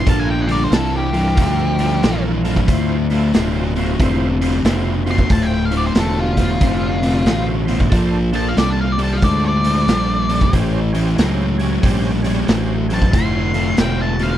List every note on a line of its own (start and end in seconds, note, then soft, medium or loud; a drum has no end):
0.05 0.70 A#1 medium
0.05 0.43 G2 medium
0.05 0.44 D3 medium
0.05 0.35 F4 medium
0.05 0.35 A4 medium
0.05 0.35 A#4 loud
0.05 0.20 A5 medium
0.05 kick loud
0.05 open hi-hat medium
0.20 0.28 G#5 medium
0.30 0.48 G5 medium
0.41 0.47 F5 medium
0.47 0.69 G2 medium
0.47 0.70 D3 medium
0.47 0.64 F4 medium
0.47 0.64 A4 medium
0.47 0.65 A#4 medium
0.47 open hi-hat medium
0.52 0.64 D5 medium
0.64 0.74 C5 medium
0.70 1.35 C2 medium
0.70 1.09 G2 medium
0.70 1.09 E3 loud
0.70 1.00 F4 medium
0.70 1.00 A4 medium
0.70 0.94 A4 medium
0.70 1.00 A#4 medium
0.70 snare loud
0.70 open hi-hat medium
0.96 2.23 G4 medium
1.12 1.35 G2 medium
1.12 1.35 E3 medium
1.12 1.30 F4 medium
1.12 1.30 A4 medium
1.12 1.30 A#4 medium
1.12 open hi-hat medium
1.35 2.01 D2 medium
1.35 1.75 G2 medium
1.35 1.75 F3 medium
1.35 1.65 F4 medium
1.35 1.65 A4 medium
1.35 1.66 A#4 loud
1.35 kick loud
1.35 open hi-hat medium
1.78 2.01 G2 medium
1.78 2.01 F3 medium
1.78 1.95 F4 medium
1.78 1.95 A4 medium
1.78 1.96 A#4 medium
1.78 open hi-hat medium
2.03 2.67 A#1 loud
2.03 2.41 G2 medium
2.03 2.41 E3 medium
2.03 2.32 F4 medium
2.03 2.32 A4 medium
2.03 2.32 A#4 loud
2.03 snare loud
2.03 open hi-hat medium
2.42 2.67 G2 medium
2.42 2.67 E3 medium
2.42 2.60 F4 loud
2.42 2.61 A4 medium
2.42 2.61 A#4 loud
2.42 open hi-hat medium
2.56 kick medium
2.67 3.32 D2 medium
2.67 3.06 D2 medium
2.67 3.07 A2 medium
2.67 2.97 E4 loud
2.67 2.97 F4 loud
2.67 2.97 C5 loud
2.67 kick loud
2.67 open hi-hat medium
3.10 3.32 D2 medium
3.10 3.33 A2 medium
3.10 3.27 E4 loud
3.10 3.27 F4 medium
3.10 3.28 A4 loud
3.10 open hi-hat medium
3.34 3.98 D1 medium
3.34 3.72 D2 loud
3.34 3.72 B2 loud
3.34 3.63 E4 medium
3.34 3.64 F4 medium
3.34 3.64 C5 loud
3.34 snare loud
3.34 open hi-hat medium
3.76 3.97 D2 medium
3.76 3.98 B2 medium
3.76 3.94 E4 loud
3.76 3.93 F4 medium
3.76 3.93 C5 loud
3.76 open hi-hat soft
3.99 4.63 E1 medium
3.99 4.37 D2 medium
3.99 4.37 C3 medium
3.99 4.29 E4 loud
3.99 4.29 F4 loud
3.99 4.30 C5 loud
3.99 kick loud
3.99 open hi-hat medium
4.41 4.63 D2 medium
4.41 4.63 C3 medium
4.41 4.58 E4 medium
4.41 4.58 F4 medium
4.41 4.58 C5 medium
4.41 open hi-hat medium
4.64 5.29 F1 loud
4.64 5.02 D2 medium
4.64 5.03 B2 medium
4.64 4.94 E4 medium
4.64 4.94 F4 medium
4.64 4.95 C5 loud
4.64 snare loud
4.64 open hi-hat medium
5.04 5.28 D2 medium
5.04 5.28 B2 medium
5.04 5.22 E4 medium
5.04 5.23 F4 medium
5.04 5.23 C5 medium
5.04 open hi-hat medium
5.11 5.31 C6 loud
5.18 kick medium
5.29 5.94 D1 medium
5.29 5.68 D2 medium
5.29 5.68 A2 medium
5.29 5.59 E4 loud
5.29 5.59 F4 medium
5.29 5.59 C5 loud
5.29 5.45 A5 loud
5.29 kick loud
5.29 open hi-hat medium
5.43 5.52 G5 medium
5.54 5.65 G5 medium
5.65 5.71 F5 medium
5.70 5.94 D2 medium
5.70 5.94 A2 medium
5.70 5.88 E4 medium
5.70 5.88 F4 medium
5.70 5.88 C5 medium
5.70 open hi-hat medium
5.77 5.87 D5 medium
5.87 5.95 C5 medium
5.94 6.59 E1 medium
5.94 6.33 D2 medium
5.94 6.33 B2 loud
5.94 6.24 E4 medium
5.94 6.24 F4 medium
5.94 6.25 C5 medium
5.94 snare loud
5.94 open hi-hat medium
5.99 6.19 A4 loud
6.20 7.46 F4 loud
6.34 6.59 D2 medium
6.34 6.59 B2 medium
6.34 6.53 E4 medium
6.34 6.54 F4 medium
6.34 6.54 C5 medium
6.34 kick medium
6.34 open hi-hat medium
6.61 7.25 F1 medium
6.61 6.99 D2 medium
6.61 6.99 C3 medium
6.61 6.90 E4 medium
6.61 6.91 F4 medium
6.61 6.91 C5 loud
6.61 kick loud
6.61 open hi-hat medium
7.02 7.24 D2 medium
7.02 7.25 C3 medium
7.02 7.20 E4 medium
7.02 7.20 F4 medium
7.02 7.20 D5 medium
7.02 open hi-hat medium
7.25 7.90 A1 loud
7.25 7.64 D2 medium
7.25 7.64 B2 medium
7.25 7.55 E4 medium
7.25 7.55 F4 medium
7.25 7.56 C5 loud
7.25 snare loud
7.25 open hi-hat medium
7.65 7.90 D2 medium
7.65 7.90 B2 medium
7.65 7.84 E4 loud
7.65 7.84 F4 medium
7.65 7.84 C5 medium
7.65 open hi-hat medium
7.80 kick medium
7.90 8.56 A#1 medium
7.90 8.29 A#2 medium
7.90 8.29 F3 loud
7.90 8.20 D4 loud
7.90 8.20 A4 loud
7.90 8.20 C5 loud
7.90 kick loud
7.90 open hi-hat medium
8.32 8.55 A#2 medium
8.32 8.55 F3 medium
8.32 8.49 D4 medium
8.32 8.50 A4 medium
8.32 8.50 C5 medium
8.32 8.49 A5 medium
8.32 open hi-hat soft
8.48 8.57 F5 loud
8.57 9.21 C2 medium
8.57 8.95 A#2 loud
8.57 8.95 G3 medium
8.57 8.86 D4 medium
8.57 8.87 A4 medium
8.57 8.86 C5 medium
8.57 8.71 D5 medium
8.57 snare loud
8.57 open hi-hat medium
8.70 8.79 A5 medium
8.81 8.92 F5 medium
8.92 8.98 D5 medium
8.98 9.20 A#2 medium
8.98 9.21 G3 medium
8.98 9.15 D4 medium
8.98 9.15 A4 medium
8.98 9.15 C5 medium
8.98 open hi-hat soft
9.04 9.16 A5 loud
9.13 9.24 F5 medium
9.22 9.86 D2 medium
9.22 9.60 A#2 medium
9.22 9.60 G#3 medium
9.22 9.51 D4 loud
9.22 9.52 A4 medium
9.22 9.52 C5 loud
9.22 9.45 D5 loud
9.22 kick loud
9.22 open hi-hat medium
9.46 10.51 D5 loud
9.64 9.86 A#2 medium
9.64 9.86 G#3 medium
9.64 9.82 D4 medium
9.64 9.82 A4 medium
9.64 9.82 C5 medium
9.64 open hi-hat medium
9.87 10.51 A#1 medium
9.87 10.25 A#2 medium
9.87 10.25 G3 medium
9.87 10.17 D4 medium
9.87 10.17 A4 medium
9.87 10.17 C5 medium
9.87 snare loud
9.87 open hi-hat medium
10.29 10.51 A#2 medium
10.29 10.51 G3 medium
10.29 10.46 D4 medium
10.29 10.46 A4 medium
10.29 10.47 C5 medium
10.29 open hi-hat medium
10.41 kick medium
10.51 11.16 A1 medium
10.51 10.90 A2 medium
10.51 10.91 E3 medium
10.51 10.81 C#4 loud
10.51 10.81 G4 loud
10.51 10.82 C5 loud
10.51 kick loud
10.51 open hi-hat medium
10.93 11.16 A2 medium
10.93 11.16 E3 medium
10.93 11.10 C#4 medium
10.93 11.10 G4 medium
10.93 11.11 C5 loud
10.93 open hi-hat medium
11.17 11.82 C#2 medium
11.17 11.56 A2 medium
11.17 11.56 F#3 loud
11.17 11.46 C#4 medium
11.17 11.47 G4 medium
11.17 11.47 C5 medium
11.17 snare loud
11.17 open hi-hat medium
11.58 11.81 A2 medium
11.58 11.82 F#3 medium
11.58 11.75 C#4 loud
11.58 11.75 G4 medium
11.58 11.76 C#5 loud
11.58 open hi-hat medium
11.82 12.46 A#1 medium
11.82 12.21 A2 medium
11.82 12.21 G3 medium
11.82 12.11 C#4 loud
11.82 12.11 G4 loud
11.82 12.12 C5 loud
11.82 kick loud
11.82 open hi-hat medium
12.23 12.46 A2 medium
12.23 12.46 G3 medium
12.23 12.40 C#4 medium
12.23 12.41 G4 medium
12.23 12.41 C#5 medium
12.23 open hi-hat medium
12.45 13.11 A1 medium
12.45 12.86 A2 medium
12.45 12.75 C#4 medium
12.45 12.76 G4 medium
12.45 12.76 C5 loud
12.45 open hi-hat medium
12.49 12.86 F#3 loud
12.49 snare loud
12.89 13.11 A2 medium
12.89 13.11 F#3 medium
12.89 13.06 C#4 medium
12.89 13.06 G4 medium
12.89 13.06 C5 medium
12.89 open hi-hat medium
12.94 13.14 A5 medium
13.02 kick medium
13.11 13.76 F1 medium
13.11 13.51 D2 medium
13.11 13.51 A2 loud
13.11 13.41 E4 loud
13.11 13.41 F4 medium
13.11 13.41 C5 medium
13.11 13.77 C6 loud
13.11 kick loud
13.11 open hi-hat medium
13.54 13.76 D2 medium
13.54 13.76 A2 medium
13.54 13.71 E4 medium
13.54 13.71 F4 medium
13.54 13.71 A4 medium
13.54 open hi-hat medium
13.77 14.38 E1 medium
13.77 14.16 D2 medium
13.77 14.16 B2 loud
13.77 14.06 E4 medium
13.77 14.07 F4 medium
13.77 14.07 C5 medium
13.77 14.00 G5 medium
13.77 snare loud
13.77 open hi-hat medium
14.02 14.22 A5 medium
14.19 14.38 D2 medium
14.19 14.38 B2 medium
14.19 14.36 E4 medium
14.19 14.37 F4 medium
14.19 14.37 C5 medium
14.19 14.38 F5 loud
14.19 open hi-hat medium